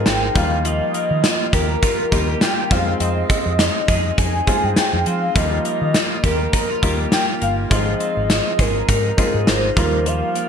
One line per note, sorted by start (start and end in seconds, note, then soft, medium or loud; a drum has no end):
0.00 0.35 F3 medium
0.00 0.38 G#3 medium
0.00 0.37 C4 medium
0.00 0.42 C4 medium
0.00 0.36 D#4 medium
0.00 0.36 F4 medium
0.00 0.42 G#4 medium
0.06 0.28 G#1 medium
0.06 0.68 D#4 medium
0.06 0.38 G5 medium
0.06 snare loud
0.06 closed hi-hat medium
0.35 0.80 D#2 medium
0.35 0.65 F3 medium
0.35 1.30 G3 medium
0.35 1.30 A#3 medium
0.35 1.30 D#4 medium
0.35 1.31 F4 medium
0.35 0.67 F5 medium
0.35 kick medium
0.35 closed hi-hat medium
0.65 3.62 F3 medium
0.65 1.54 D#5 loud
0.65 closed hi-hat medium
0.94 2.71 A#3 medium
0.94 closed hi-hat medium
1.11 1.21 D#3 medium
1.24 1.82 F4 medium
1.24 snare loud
1.24 closed hi-hat medium
1.53 1.75 D#2 medium
1.53 2.12 G4 medium
1.53 2.38 A#4 loud
1.53 kick medium
1.53 closed hi-hat medium
1.83 2.12 F4 medium
1.83 kick medium
1.83 closed hi-hat medium
2.11 2.34 D#2 medium
2.11 2.69 G3 medium
2.11 2.71 A#3 medium
2.11 2.70 D#4 medium
2.11 2.28 F4 medium
2.11 2.71 G4 medium
2.11 kick medium
2.11 closed hi-hat medium
2.28 2.77 G4 medium
2.41 3.59 F4 medium
2.41 2.73 G5 loud
2.41 snare loud
2.41 closed hi-hat medium
2.70 2.93 F2 medium
2.70 2.78 G3 medium
2.70 3.65 C4 medium
2.70 2.99 C4 medium
2.70 3.66 D#4 medium
2.70 3.66 F4 medium
2.70 3.00 F5 medium
2.70 kick loud
2.70 closed hi-hat medium
2.77 3.68 G#3 medium
3.00 3.22 F2 medium
3.00 3.28 C4 medium
3.00 4.14 D#5 loud
3.00 closed hi-hat medium
3.30 5.05 C4 medium
3.30 kick medium
3.30 closed hi-hat medium
3.46 3.68 F2 medium
3.59 4.18 D#4 medium
3.59 snare loud
3.59 closed hi-hat medium
3.88 4.10 F2 medium
3.88 4.46 G#4 medium
3.88 kick medium
3.88 closed hi-hat medium
4.18 4.40 F2 medium
4.18 4.77 D#4 medium
4.18 4.66 G#5 loud
4.18 kick medium
4.18 closed hi-hat medium
4.47 5.15 G#3 medium
4.47 5.16 C4 medium
4.47 5.16 D#4 medium
4.47 5.16 F4 medium
4.47 5.42 G#4 medium
4.47 muted fingered electric bass stroke soft
4.47 kick medium
4.47 closed hi-hat medium
4.63 4.73 G2 medium
4.63 4.77 G5 loud
4.76 5.94 D#4 medium
4.76 5.04 G5 medium
4.76 muted fingered electric bass stroke soft
4.76 snare loud
4.76 closed hi-hat medium
4.93 5.03 F2 medium
5.06 5.28 F3 medium
5.06 5.42 C4 medium
5.06 5.38 F5 medium
5.06 closed hi-hat medium
5.35 5.58 D#2 medium
5.35 7.70 F3 medium
5.35 6.25 G3 medium
5.35 6.26 A#3 medium
5.35 6.26 D#4 medium
5.35 6.26 F4 medium
5.35 6.24 D#5 loud
5.35 kick loud
5.35 closed hi-hat medium
5.65 7.40 A#3 medium
5.65 closed hi-hat medium
5.81 5.91 D#3 medium
5.94 6.11 D#4 medium
5.94 snare loud
5.94 closed hi-hat medium
6.11 6.53 F4 soft
6.24 6.46 D#2 medium
6.24 6.82 G4 medium
6.24 7.08 A#4 medium
6.24 kick medium
6.24 closed hi-hat medium
6.53 6.70 D#4 medium
6.53 kick medium
6.53 closed hi-hat medium
6.70 7.11 F4 medium
6.82 7.05 D#2 medium
6.82 7.51 G3 medium
6.82 7.51 A#3 medium
6.82 7.51 D#4 medium
6.82 7.51 F4 medium
6.82 7.77 G4 medium
6.82 kick medium
6.82 closed hi-hat medium
7.12 8.29 F4 medium
7.12 7.26 G5 loud
7.12 snare loud
7.12 closed hi-hat medium
7.42 7.64 G1 medium
7.42 7.77 A#3 medium
7.42 7.55 F5 medium
7.42 closed hi-hat medium
7.70 7.93 G#1 medium
7.70 9.77 F3 medium
7.70 8.61 G#3 medium
7.70 8.61 C4 medium
7.70 8.61 D#4 medium
7.70 8.61 F4 medium
7.70 8.62 D#5 loud
7.70 kick loud
7.70 closed hi-hat medium
8.00 9.83 C4 medium
8.00 closed hi-hat medium
8.17 8.39 G#1 medium
8.30 8.88 D#4 medium
8.30 snare loud
8.30 closed hi-hat medium
8.59 8.81 G#1 medium
8.59 9.17 G#4 medium
8.59 9.48 A#4 medium
8.59 kick medium
8.59 closed hi-hat medium
8.89 9.11 G#2 medium
8.89 9.47 D#4 medium
8.89 kick medium
8.89 closed hi-hat medium
9.17 9.76 G#3 medium
9.17 9.77 C4 medium
9.17 9.75 D#4 medium
9.17 9.76 F4 medium
9.17 9.83 G#4 medium
9.17 kick medium
9.17 closed hi-hat medium
9.34 9.44 G#2 medium
9.47 9.69 G#1 medium
9.47 10.09 D#4 medium
9.47 9.79 C5 medium
9.47 snare loud
9.47 closed hi-hat medium
9.76 10.21 D#2 loud
9.76 10.06 F3 medium
9.76 10.49 G3 medium
9.76 10.49 A#3 medium
9.76 10.49 D#4 medium
9.76 10.49 F4 medium
9.76 10.09 A#4 medium
9.76 kick medium
9.76 closed hi-hat medium
10.06 10.49 F3 medium
10.06 10.49 F5 medium
10.06 closed hi-hat medium
10.35 10.49 A#3 medium
10.35 closed hi-hat medium